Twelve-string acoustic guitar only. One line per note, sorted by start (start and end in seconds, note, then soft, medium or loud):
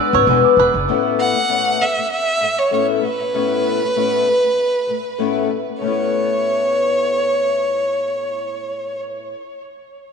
0.00 0.27 G#3 medium
0.00 0.27 B3 medium
0.00 0.27 D4 medium
0.00 0.28 B4 medium
0.27 0.58 E2 medium
0.27 0.58 E3 medium
0.27 0.56 G#3 medium
0.27 0.58 B3 loud
0.27 0.57 D4 medium
0.27 0.59 B4 loud
0.57 0.75 G#3 medium
0.57 0.74 B3 medium
0.57 0.75 D4 medium
0.57 0.72 B4 medium
0.73 0.88 G#3 soft
0.73 0.88 B3 medium
0.73 0.88 D4 medium
0.73 0.88 B4 medium
0.88 1.34 A2 medium
0.88 1.36 A3 medium
0.88 1.36 B3 loud
0.88 1.36 C#4 medium
0.88 1.37 E4 loud
1.35 1.47 A2 soft
1.35 1.48 A3 soft
1.48 1.77 A2 medium
1.48 1.80 A3 medium
1.48 1.81 B3 medium
1.48 1.80 C#4 medium
1.48 1.81 E4 medium
1.79 1.94 A2 medium
1.79 1.97 A3 medium
1.95 2.20 A2 soft
1.95 2.22 A3 soft
2.40 2.66 A2 medium
2.40 2.68 A3 medium
2.71 3.01 A2 medium
2.71 3.02 A3 medium
2.71 3.03 B3 medium
2.71 3.03 C#4 medium
2.71 3.03 E4 medium
3.02 3.17 A2 medium
3.02 3.20 A3 medium
3.18 3.32 A2 soft
3.18 3.33 A3 soft
3.33 3.81 A2 medium
3.33 3.81 A3 medium
3.33 3.82 B3 medium
3.33 3.81 C#4 medium
3.33 3.82 E4 medium
3.82 3.94 A2 soft
3.82 3.95 A3 medium
3.95 4.24 A2 medium
3.95 4.26 A3 medium
3.95 4.26 B3 medium
3.95 4.26 C#4 medium
3.95 4.27 E4 medium
4.25 4.41 A2 medium
4.25 4.44 A3 medium
4.42 4.66 A2 soft
4.42 4.68 A3 medium
4.87 5.12 A2 medium
4.87 5.13 A3 medium
5.18 5.48 A2 medium
5.18 5.48 A3 medium
5.18 5.49 B3 medium
5.18 5.49 C#4 medium
5.18 5.49 E4 medium
5.49 5.65 A2 medium
5.49 5.67 A3 medium
5.66 5.78 A2 soft
5.66 5.80 A3 soft
5.79 9.33 A2 medium
5.79 9.35 A3 medium
5.84 9.39 B3 medium
5.84 9.38 C#4 medium
5.84 9.41 E4 medium